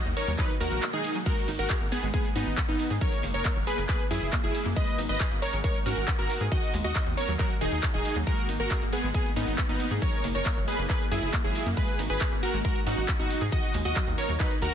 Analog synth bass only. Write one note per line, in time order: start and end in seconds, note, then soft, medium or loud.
0.06 0.14 D#2 medium
0.28 0.36 D#2 medium
0.60 0.69 D#2 medium
0.72 0.80 A#1 medium
1.48 1.57 G#1 medium
1.59 1.68 G#1 medium
1.81 1.89 G#1 medium
2.03 2.11 G#1 medium
2.36 2.44 G#2 medium
2.47 2.55 G#1 medium
2.69 2.77 G#1 medium
2.91 2.99 G#2 medium
3.23 3.32 F#1 medium
3.34 3.43 F#1 medium
3.56 3.65 F#1 medium
3.78 3.87 F#1 medium
4.11 4.20 F#2 medium
4.22 4.30 F#1 medium
4.44 4.52 F#1 medium
4.66 4.74 F#2 medium
4.98 5.07 G#1 medium
5.09 5.18 G#1 medium
5.31 5.40 G#1 medium
5.53 5.62 G#1 medium
5.86 5.95 G#2 loud
5.97 6.06 G#1 medium
6.19 6.27 G#1 medium
6.41 6.49 G#2 medium
6.74 6.82 D#2 medium
6.84 6.93 D#2 medium
7.06 7.15 D#2 medium
7.28 7.37 D#2 medium
7.61 7.70 D#1 medium
7.72 7.81 D#2 medium
7.94 8.03 D#1 medium
8.16 8.24 D#2 medium
8.49 8.57 G#1 loud
8.60 8.68 G#1 medium
8.82 8.90 G#1 medium
9.03 9.12 G#1 medium
9.36 9.45 G#2 medium
9.47 9.56 G#1 medium
9.69 9.78 G#1 medium
9.91 10.00 G#2 medium
10.24 10.33 F#1 loud
10.35 10.43 F#1 medium
10.57 10.65 F#1 medium
10.79 10.87 F#1 medium
11.11 11.20 F#2 loud
11.22 11.31 F#1 medium
11.44 11.53 F#1 medium
11.66 11.75 F#2 medium
11.99 12.08 G#1 loud
12.10 12.19 G#1 medium
12.32 12.41 G#1 medium
12.54 12.62 G#1 medium
12.87 12.95 G#2 loud
12.98 13.06 G#1 medium
13.20 13.28 G#1 medium
13.41 13.50 G#2 medium
13.74 13.83 D#2 loud
13.85 13.94 D#2 medium
14.07 14.16 D#2 medium
14.29 14.38 D#2 medium
14.62 14.70 D#2 loud